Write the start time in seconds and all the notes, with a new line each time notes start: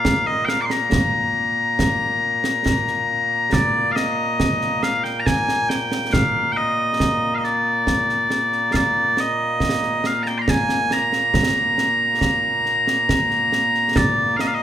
Already playing: A#2 A#3 F5
0.05 concert bass drum, snare
0.27 D#5
0.45 F5 G5, snare
0.61 C6 D6
0.70 A#5, snare
0.92 concert bass drum, snare
1.79 concert bass drum, snare
2.44 snare
2.66 concert bass drum, snare
2.87 snare
3.53 D5, concert bass drum, snare
3.91 D#5 F5
3.96 snare
4.40 concert bass drum, snare
4.61 snare
4.83 F5, snare
5.04 G5, snare
5.20 A#5
5.26 G#5, concert bass drum, snare
5.49 snare
5.69 G5, snare
5.92 snare
6.13 F5, concert bass drum, snare
6.52 G5
6.57 D#5
7.00 concert bass drum, snare
7.35 D#5 F5
7.44 D5, snare
7.87 concert bass drum, snare
8.09 snare
8.30 snare
8.52 snare
8.72 D5 F5, concert bass drum, snare
9.17 D#5, snare
9.60 concert bass drum, snare
9.83 snare
10.04 F5, snare
10.23 A#5, snare
10.27 G5
10.38 A#5 C6
10.48 G#5, concert bass drum, snare
10.69 snare
10.91 A#5, snare
11.13 snare
11.34 concert bass drum, snare
11.78 snare
12.21 concert bass drum, snare
12.66 snare
12.87 snare
13.09 concert bass drum, snare
13.31 snare
13.52 snare
13.74 snare
13.96 D5, concert bass drum, snare
14.36 F5, snare
14.40 D#5
14.47 F5
14.54 D#5